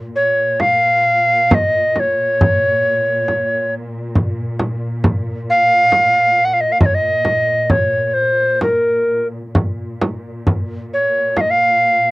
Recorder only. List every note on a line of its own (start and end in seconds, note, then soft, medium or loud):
0.16 0.62 C#5 medium
0.60 1.56 F5 medium
1.54 2.01 D#5 medium
1.99 3.74 C#5 medium
5.50 6.46 F5 loud
6.45 6.55 F#5 medium
6.53 6.62 F5 medium
6.61 6.73 D#5 medium
6.72 6.80 F5 medium
6.82 6.87 D#5 medium
6.86 6.96 C#5 medium
6.94 7.72 D#5 medium
7.71 8.07 C#5 medium
8.07 8.15 C#5 medium
8.14 8.60 C5 medium
8.62 9.27 A#4 medium
10.94 11.39 C#5 medium
11.37 11.52 D#5 medium
11.37 11.42 F5 medium
11.51 12.11 F5 medium